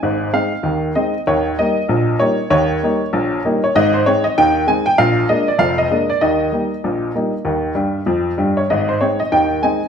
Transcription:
X:1
M:2/4
L:1/16
Q:"Swing 16ths" 1/4=97
K:Ab
V:1 name="Upright piano"
a2 f4 e2 | d2 e4 d2 | d6- d d | e c d e g2 a g |
f2 e =d f e2 d | e8- | e4 z3 d | e c d e g2 a2 |]
V:2 name="Upright piano" clef=bass
[A,,,A,,]2 [A,CE]2 [E,,E,]2 [A,CE]2 | [E,,E,]2 [G,B,E]2 [B,,,B,,]2 [G,B,E]2 | [E,,E,]2 [G,B,E]2 [B,,,B,,]2 [G,B,E]2 | [A,,,A,,]2 [A,CE]2 [E,,E,]2 [A,CE]2 |
[B,,,B,,]2 [A,B,=D]2 [F,,,F,,]2 [A,B,D]2 | [E,,E,]2 [G,B,E]2 [B,,,B,,]2 [G,B,E]2 | [E,,E,]2 [G,,G,]2 [F,,F,]2 [G,,G,]2 | [A,,,A,,]2 [A,CE]2 [E,,E,]2 [A,CE]2 |]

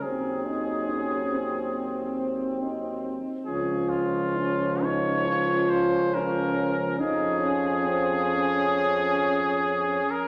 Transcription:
X:1
M:4/4
L:1/16
Q:1/4=70
K:Db
V:1 name="Cornet"
A12- A2 z2 | A2 F4 d4 c2 B4 | A12- A3 B |]
V:2 name="Euphonium"
C2 E2 D2 C6 E2 z2 | F4 D2 E2 F4 D4 | E2 D2 C2 D8 z2 |]
V:3 name="French horn section"
C16 | D16 | D16 |]
V:4 name="Trombone" clef=bass
G,12- G,2 z2 | F,16 | F,12- F,2 z2 |]
V:5 name="Tuba" clef=bass
E,,12- E,,2 z2 | D,,16 | F,,12- F,,2 z2 |]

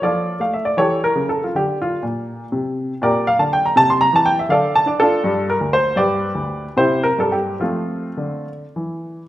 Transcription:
X:1
M:6/8
L:1/16
Q:3/8=81
K:Bblyd
V:1 name="Grand piano"
[FAd]3 f e d [GA^c]2 B2 A F | G2 F2 z8 | [K:F] [GBd]2 f a g b a c' b a g e | [Adf]2 a d [DFA]4 B2 c2 |
[G=Bd]6 [EGc]2 _B A G2 | [A,CF]6 z6 |]
V:2 name="Grand piano" clef=bass
F,3 A,3 E,3 ^C,3 | D,4 B,,4 C,4 | [K:F] B,,3 D,3 C,3 E,3 | D,3 D3 G,,3 D,,3 |
G,,3 D,,3 C,3 G,,3 | F,4 D,4 E,4 |]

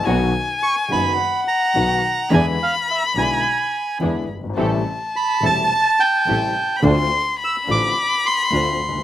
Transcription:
X:1
M:4/4
L:1/16
Q:1/4=106
K:Am
V:1 name="Violin"
^g8 ^f8 | b12- b2 z2 | a12- a3- a/2 b/2 | c'4 b12 |]
V:2 name="Bandoneon"
z4 ^c'2 b4 _b6 | ^g2 f2 e2 g6 z4 | z4 b2 a4 g6 | z4 e'2 d'4 c'6 |]
V:3 name="String section"
[B,^D^F]2 z4 [B,DF]2 z4 [B,DF]2 z2 | [DE^G]2 z4 [DEG]2 z4 [DEG]2 z2 | [CGA]2 z4 [CGA]2 z4 [CGA]2 z2 | [DFc]2 z4 [DFc]2 z4 [DFc]2 z2 |]
V:4 name="Grand piano" clef=bass
[B,,,B,,^D,^F,B,^F]2 z4 [^F,,,^F,,D,F,B,F]2 z4 [B,,,B,,D,F,B,F]2 z2 | [E,,D,E,^G,B,E]2 z4 [B,,,B,,D,G,B,E]2 z4 [E,,D,E,G,B,E]2 z/2 ^F,,,/2 =G,,,/2 ^G,,,/2 | [A,,,A,,C,G,A,E]2 z4 [E,,,E,,C,G,A,E]2 z4 [A,,,A,,C,G,A,E]2 z2 | [D,,D,A,CF]2 z4 [A,,,A,,D,A,CF]2 z4 [D,,D,A,CF]2 z/2 ^C,,/2 D,,/2 z/2 |]
V:5 name="Double bass" clef=bass
B,,,2 z4 ^F,,,2 z4 B,,,2 z2 | E,,2 z4 B,,,2 z4 E,,2 G,,,2 | A,,,2 z4 E,,,2 z4 A,,,2 z2 | D,,2 z4 A,,,2 z4 D,,2 D,,2 |]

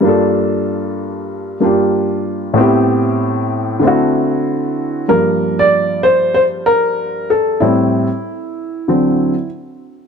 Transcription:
X:1
M:4/4
L:1/16
Q:"Swing 16ths" 1/4=95
K:Gm
V:1 name="Upright piano"
[G,,B,DFA]8- [G,,B,DFA]2 [G,,B,DFG]6 | [A,,=B,C=EG]8 [D,A,CE^F]8 | B3 d3 c2 c2 B4 A2 | =E12 z4 |]
V:2 name="Upright piano" clef=bass
z16 | z16 | [G,,F,B,]16 | [A,,G,C]2 z6 [D,^F,C]2 z6 |]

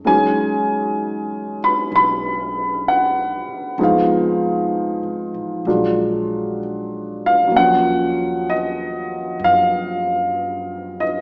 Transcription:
X:1
M:4/4
L:1/8
Q:"Swing" 1/4=64
K:Ebm
V:1 name="Upright piano"
^g3 =b b2 ^f2 | f6 z f | g2 e2 f3 e |]
V:2 name="Upright piano"
[^F,^G,^C^D]8 | [F,A,CE]4 [G,A,=DF]4 | [F,G,B,D]8 |]
V:3 name="Upright bass" clef=bass
=E,,4 =B,,,3 z | F,,,2- (3F,,, A,,, =A,,, B,,,4 | E,,4 G,,4 |]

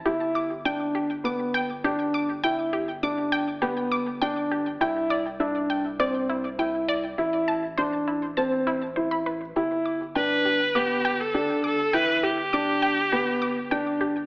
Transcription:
X:1
M:4/4
L:1/16
Q:1/4=101
K:G
V:1 name="Synth arpeggio sound"
G z d' z g z G z d' z g z G z d' z | g z G z d' z g z G z d' z g z G z | g z d z E z g z d z E z g z d z | E z a z c z E z a z E z c b B z |
G z d' z g z G z d' z g z G z d' z | g z G z d' z g z G z d' z g z G z |]
V:2 name="Viola"
z16 | z16 | z16 | z16 |
z4 B4 G3 A3 A2 | B2 G12 z2 |]
V:3 name="Grand piano"
E4 D4 B,4 D4 | E4 D4 B,4 D4 | E4 D4 C4 E4 | E4 D4 C4 E4 |
E4 D4 B,4 D4 | E4 D4 B,4 D4 |]
V:4 name="Analog synth bass" clef=bass
G,,,16- | G,,,16 | C,,16 | A,,,16 |
G,,,16- | G,,,16 |]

